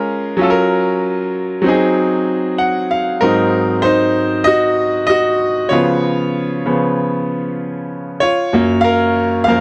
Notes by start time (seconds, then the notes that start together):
Already playing: G#3 C#4 F4 A#4
0.37 F#3 C#4
0.41 F4 A4
0.50 A#4
1.62 F#3 C4
1.66 D#4 G#4
2.58 F#5
2.91 F5
3.21 G#2 F#3 C4 D#4 A#4
3.82 D#4 C5
4.44 F#4 D#5
5.07 F#4 D#5
5.69 C#3 F3 B3 F4 C#5
6.66 C#3 F3 B3
8.20 F4 C#5
8.53 F#2 F#3 A#3
8.81 A#4 F5
9.44 F#2 F3 A#3 F5
9.48 A#4